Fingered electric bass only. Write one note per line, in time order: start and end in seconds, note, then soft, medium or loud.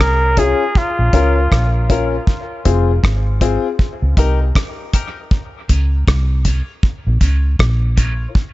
0.00 0.52 C2 loud
0.99 1.12 A#1 medium
1.14 1.46 C#2 medium
1.52 2.18 A#1 medium
2.66 2.99 F1 medium
3.04 3.56 G#1 loud
4.02 4.16 C#2 medium
4.18 4.50 C2 medium
5.70 6.03 C#2 medium
6.08 6.60 C2 loud
7.07 7.20 A#1 medium
7.21 7.54 C#2 medium
7.60 8.25 A#1 medium